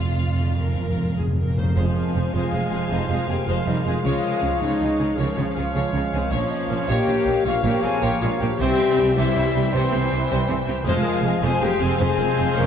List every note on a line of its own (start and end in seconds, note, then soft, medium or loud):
0.00 1.56 F1 medium
0.00 1.57 F2 medium
0.00 1.75 F3 medium
0.00 0.79 F4 soft
0.00 1.15 F4 medium
0.00 0.56 F4 medium
0.00 0.41 G#4 soft
0.00 3.14 C5 soft
0.00 1.15 F5 medium
0.00 1.17 C6 soft
0.04 0.11 F2 soft
0.12 0.18 F2 soft
0.19 0.26 F2 soft
0.19 1.37 F5 soft
0.27 0.34 F2 soft
0.35 0.42 F2 medium
0.42 0.50 F2 medium
0.42 0.98 G#4 soft
0.51 0.58 F2 soft
0.59 0.65 F2 medium
0.59 2.90 G#3 soft
0.59 1.17 A#4 medium
0.66 0.73 F2 medium
0.74 0.81 F2 medium
0.80 0.89 F2 medium
0.80 1.95 F4 soft
0.90 0.96 F2 medium
0.97 1.03 F2 medium
0.97 1.57 G#4 soft
1.05 1.11 F2 medium
1.12 1.18 F2 medium
1.18 1.26 F2 medium
1.18 1.38 G#4 medium
1.18 2.32 C6 soft
1.27 1.34 F2 medium
1.35 1.41 F2 medium
1.35 1.57 A#4 medium
1.35 2.51 F5 soft
1.42 1.49 F2 medium
1.50 1.56 F2 medium
1.56 1.63 F2 medium
1.56 1.75 C#3 medium
1.56 1.65 A#3 medium
1.56 2.13 G#4 soft
1.56 1.80 A#4 medium
1.56 1.76 C5 medium
1.64 1.72 F2 medium
1.76 1.84 F1 medium
1.76 2.29 F2 medium
1.76 1.84 F2 medium
1.76 5.66 F3 medium
1.76 2.32 F3 medium
1.76 2.30 F3 medium
1.76 2.29 G#3 medium
1.76 2.32 C4 medium
1.76 1.96 G#4 medium
1.76 1.94 C5 medium
1.76 2.30 C5 medium
1.76 2.35 C5 medium
1.76 6.28 F5 medium
1.76 4.00 G#5 medium
1.95 3.08 F4 soft
1.95 2.17 A#4 medium
2.14 2.22 F1 medium
2.14 2.22 F2 medium
2.14 2.70 G#4 soft
2.14 2.23 G#4 soft
2.14 2.35 C5 medium
2.33 2.42 F1 medium
2.33 2.41 F2 medium
2.33 3.46 F3 medium
2.33 2.89 G#3 medium
2.33 3.46 G#3 medium
2.33 2.89 F4 loud
2.33 2.93 G#4 medium
2.33 2.51 C5 medium
2.33 3.45 C5 medium
2.33 2.93 F5 medium
2.33 3.47 C6 medium
2.52 2.60 F1 medium
2.52 2.60 F2 soft
2.52 2.61 C5 medium
2.52 3.65 F5 medium
2.71 2.79 F1 medium
2.71 2.79 F2 medium
2.71 3.28 G#4 medium
2.71 2.80 G#4 medium
2.90 2.98 F1 medium
2.90 2.98 F2 medium
2.90 3.09 G3 medium
2.90 4.23 G#3 medium
2.90 3.10 D#4 loud
2.90 3.07 C5 medium
2.90 3.47 C5 medium
2.90 3.10 D#5 medium
3.08 3.17 F1 medium
3.08 3.17 F2 medium
3.08 3.28 G#3 medium
3.08 3.27 F4 medium
3.08 6.34 F4 medium
3.08 3.16 C5 medium
3.08 3.28 F5 medium
3.27 3.36 F1 medium
3.27 3.37 F2 medium
3.27 3.36 A#3 medium
3.27 3.47 G4 medium
3.27 3.36 G#4 medium
3.27 3.84 G#4 medium
3.27 3.49 G5 medium
3.46 3.55 F1 medium
3.46 3.55 F2 medium
3.46 4.04 F3 medium
3.46 3.55 G#3 medium
3.46 4.04 G#3 medium
3.46 3.55 F4 medium
3.46 4.03 A#4 medium
3.46 4.03 C5 medium
3.46 3.65 C5 medium
3.46 3.68 F5 medium
3.46 4.06 C6 medium
3.65 3.74 F1 medium
3.65 3.74 F2 medium
3.65 3.85 G3 medium
3.65 3.84 D#4 medium
3.65 3.74 C5 medium
3.65 3.85 D#5 medium
3.83 3.93 F1 medium
3.83 3.93 F2 medium
3.83 4.03 G#3 medium
3.83 4.01 F4 medium
3.83 4.79 G#4 medium
3.83 3.94 G#4 medium
3.83 4.04 F5 medium
4.02 4.12 C#2 medium
4.02 6.34 C#3 medium
4.02 4.12 C#3 medium
4.02 5.16 F3 medium
4.02 4.60 G#3 loud
4.02 5.16 G#3 medium
4.02 4.59 F4 loud
4.02 4.26 G#4 medium
4.02 5.16 C#5 medium
4.02 4.22 C#5 medium
4.02 8.56 F5 medium
4.02 4.61 F5 medium
4.24 5.36 G#3 soft
4.24 4.43 A#4 medium
4.42 4.50 C#2 medium
4.42 4.50 C#3 medium
4.42 5.18 G#4 medium
4.42 4.51 G#4 soft
4.42 4.97 C#5 medium
4.60 4.68 C#2 medium
4.60 4.69 C#3 medium
4.60 5.19 G#3 medium
4.60 5.17 D#4 loud
4.60 4.79 C#5 medium
4.60 5.18 D#5 medium
4.60 5.73 F5 medium
4.80 4.88 C#2 medium
4.80 4.89 C#3 medium
4.80 5.93 G#4 medium
4.80 4.88 C#5 medium
4.99 5.07 C#2 medium
4.99 5.07 C#3 medium
4.99 5.07 G#4 medium
4.99 5.55 C#5 medium
5.16 5.25 C#2 medium
5.16 5.26 C#3 medium
5.16 6.29 F3 medium
5.16 5.95 F3 medium
5.16 6.30 G#3 medium
5.16 5.94 C#4 loud
5.16 8.61 C#4 medium
5.16 5.38 A#4 medium
5.16 5.34 C#5 medium
5.16 6.30 C#5 medium
5.16 5.87 C#5 medium
5.36 5.45 C#2 medium
5.36 5.46 C#3 medium
5.36 6.34 G#3 medium
5.36 5.54 G#4 medium
5.36 5.44 C#5 medium
5.54 5.63 C#2 medium
5.54 5.65 C#3 medium
5.54 5.63 G#4 medium
5.54 6.12 C#5 medium
5.54 6.33 F5 medium
5.74 5.82 C#2 medium
5.74 5.83 C#3 medium
5.74 5.92 C#5 medium
5.74 6.87 F5 medium
5.93 6.01 C#2 medium
5.93 6.02 C#3 medium
5.93 6.34 G#4 medium
5.93 6.01 C#5 medium
6.12 6.20 C#2 medium
6.12 6.21 C#3 medium
6.12 6.31 D#3 medium
6.12 6.30 C4 medium
6.12 6.21 G#4 medium
6.12 6.35 C5 medium
6.12 6.68 C#5 medium
6.30 6.39 A#1 medium
6.30 8.61 A#2 medium
6.30 6.40 A#2 medium
6.30 6.89 F3 medium
6.30 7.27 F3 medium
6.30 7.27 A#3 medium
6.30 6.89 C#4 loud
6.30 6.49 C#5 medium
6.30 7.43 C#5 medium
6.30 6.50 C#5 medium
6.30 6.89 C#5 medium
6.30 8.55 F5 medium
6.50 7.64 A#3 medium
6.50 6.59 D#5 medium
6.68 6.77 A#1 medium
6.68 6.78 A#2 medium
6.68 6.76 A#4 medium
6.68 7.25 C#5 medium
6.68 6.90 F5 medium
6.87 6.95 A#1 medium
6.87 6.96 A#2 medium
6.87 7.44 A#3 loud
6.87 7.45 G4 loud
6.87 7.06 C#5 medium
6.87 7.08 D#5 medium
6.87 8.01 F5 medium
6.87 7.45 G5 loud
7.07 7.15 A#1 medium
7.07 7.16 A#2 medium
7.07 8.21 A#4 medium
7.07 7.15 C#5 medium
7.07 7.27 C#5 medium
7.26 7.34 A#1 medium
7.26 7.35 A#2 medium
7.26 7.34 A#4 medium
7.26 7.83 C#5 medium
7.26 7.46 D#5 medium
7.44 7.52 A#1 loud
7.44 7.53 A#2 loud
7.44 8.57 F3 medium
7.44 8.61 F3 medium
7.44 8.56 A#3 medium
7.44 7.53 A#3 medium
7.44 7.64 F4 loud
7.44 7.61 C#5 medium
7.44 8.57 C#5 medium
7.44 8.31 F5 medium
7.44 7.64 F5 medium
7.63 7.71 A#1 medium
7.63 7.72 A#2 medium
7.63 7.83 A#3 medium
7.63 7.84 G4 loud
7.63 7.71 C#5 medium
7.63 7.82 G5 medium
7.82 7.91 A#1 medium
7.82 7.92 A#2 medium
7.82 8.02 C4 loud
7.82 8.02 G#4 loud
7.82 7.90 A#4 medium
7.82 8.40 C#5 medium
7.82 8.04 G#5 loud
8.01 8.10 A#1 medium
8.01 8.11 A#2 loud
8.01 8.09 A#3 loud
8.01 8.10 G4 loud
8.01 8.19 C#5 loud
8.01 8.61 F5 medium
8.01 8.21 G5 loud
8.20 8.29 A#1 medium
8.20 8.30 A#2 medium
8.20 8.29 G#3 loud
8.20 8.40 F4 loud
8.20 8.61 A#4 medium
8.20 8.28 C#5 medium
8.20 8.40 F5 loud
8.39 8.48 A#1 medium
8.39 8.49 A#2 medium
8.39 8.48 A#3 medium
8.39 8.55 G4 loud
8.39 8.48 A#4 medium
8.39 8.61 C#5 medium
8.39 8.46 G5 loud
8.56 8.67 C2 medium
8.56 9.12 C3 medium
8.56 10.88 C3 medium
8.56 8.68 C3 loud
8.56 9.15 C4 loud
8.56 9.14 G4 loud
8.56 8.77 C5 loud
8.56 9.00 C5 medium
8.56 10.82 E5 loud
8.56 9.13 E5 loud
8.56 9.15 G5 loud
8.56 10.82 G5 medium
8.60 9.14 E3 medium
8.60 9.15 G3 medium
8.98 9.06 C2 medium
8.98 9.05 C3 medium
8.98 9.05 G4 medium
8.98 9.52 C5 medium
9.14 9.24 C2 medium
9.14 9.24 C3 loud
9.14 9.70 E3 medium
9.14 9.72 G3 loud
9.14 9.70 G3 medium
9.14 9.72 E4 loud
9.14 9.71 C5 medium
9.14 9.34 C5 medium
9.14 9.35 C5 medium
9.14 10.29 E5 medium
9.14 9.74 E5 loud
9.35 9.43 C2 medium
9.35 9.43 C3 medium
9.35 10.47 G4 medium
9.35 9.44 C5 medium
9.35 9.44 C#5 medium
9.53 9.62 C2 medium
9.53 9.62 C3 medium
9.53 9.63 G4 medium
9.53 10.86 C5 loud
9.53 10.10 C5 medium
9.72 9.81 C2 medium
9.72 9.81 C3 loud
9.72 10.83 E3 medium
9.72 10.48 E3 medium
9.72 10.83 G3 medium
9.72 10.48 C4 loud
9.72 12.66 C4 medium
9.72 10.84 C5 medium
9.72 10.49 C5 loud
9.72 9.91 C5 medium
9.91 10.00 C2 medium
9.91 10.00 C3 medium
9.91 10.88 G3 medium
9.91 9.99 C5 medium
10.11 10.19 C2 medium
10.11 10.19 C3 medium
10.11 10.19 G4 medium
10.11 10.66 C5 medium
10.30 10.37 C2 loud
10.30 10.38 C3 loud
10.30 10.47 C5 medium
10.30 10.88 E5 medium
10.48 10.56 C2 medium
10.48 10.56 C3 medium
10.48 10.88 G4 medium
10.48 10.56 C5 medium
10.66 10.74 C2 medium
10.66 10.75 C3 medium
10.66 10.76 G4 medium
10.66 11.23 C5 medium
10.85 10.93 F1 loud
10.85 12.66 F2 medium
10.85 11.39 F2 loud
10.85 10.94 F2 loud
10.85 11.39 F3 medium
10.85 11.38 G#3 loud
10.85 11.39 G#3 medium
10.85 11.39 F4 loud
10.85 11.03 G#4 loud
10.85 11.39 C5 medium
10.85 11.05 C5 loud
10.85 11.39 F5 loud
10.85 12.66 F5 loud
10.85 12.66 G#5 loud
11.02 12.17 G#3 medium
11.02 11.22 A#4 loud
11.22 11.30 F1 medium
11.22 11.31 F2 medium
11.22 12.00 G#4 loud
11.22 11.33 G#4 medium
11.22 11.80 C5 medium
11.41 11.49 F1 loud
11.41 11.51 F2 loud
11.41 11.99 F3 medium
11.41 11.99 G#3 medium
11.41 11.50 C4 loud
11.41 11.62 G#4 loud
11.41 11.59 C5 loud
11.41 11.99 C5 medium
11.41 12.55 F5 medium
11.41 11.64 G#5 loud
11.61 11.68 F1 medium
11.61 11.70 F2 medium
11.61 11.69 A#3 loud
11.61 11.81 G4 loud
11.61 12.66 G#4 medium
11.61 11.68 C5 medium
11.61 11.83 G5 loud
11.80 11.88 F1 medium
11.80 11.88 F2 medium
11.80 11.99 C4 loud
11.80 11.88 G#4 medium
11.80 12.00 G#4 loud
11.80 12.36 C5 medium
11.80 12.00 G#5 loud
11.97 12.07 F1 loud
11.97 12.07 F2 loud
11.97 12.66 C3 medium
11.97 12.66 F3 loud
11.97 12.66 G#3 medium
11.97 12.55 C4 loud
11.97 12.16 C5 loud
11.97 12.17 C5 loud
11.97 12.66 C5 medium
12.01 12.56 G#4 loud
12.01 12.56 G#5 loud
12.17 12.26 F1 medium
12.17 12.27 F2 medium
12.17 12.66 G#3 medium
12.17 12.26 A#4 medium
12.17 12.26 C5 medium
12.36 12.45 F1 medium
12.36 12.46 F2 medium
12.36 12.44 G#4 medium
12.36 12.66 C5 loud
12.55 12.64 F1 loud
12.55 12.64 F2 loud
12.55 12.66 C#4 loud
12.55 12.66 A#4 loud
12.55 12.66 C5 medium
12.55 12.66 F5 medium
12.55 12.66 A#5 loud